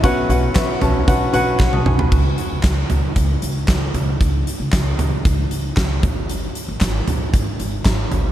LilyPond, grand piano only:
<<
  \new Staff \with { instrumentName = "Grand piano" } { \time 4/4 \key b \mixolydian \tempo 4 = 115 << { <e'' a''>16 r2 r8. <fis'' b''>16 <a'' dis'''>16 <gis'' cis'''>16 <fis'' b''>16~ | <fis'' b''>16 r2. r8. | r1 | r1 | } \\ { <cis' fis' b' fis''>8 <cis' fis' b' fis''>8 <cis' fis' b' e''>8 <cis' fis' b' a''>8 <cis' fis' b' fis''>8 <cis' fis' b' fis''>8 r4 | r1 | r1 | r1 | } >> }
  \new Staff \with { instrumentName = "Grand piano" } { \clef bass \time 4/4 \key b \mixolydian b,4. r2 r8 | r1 | r1 | r1 | }
>>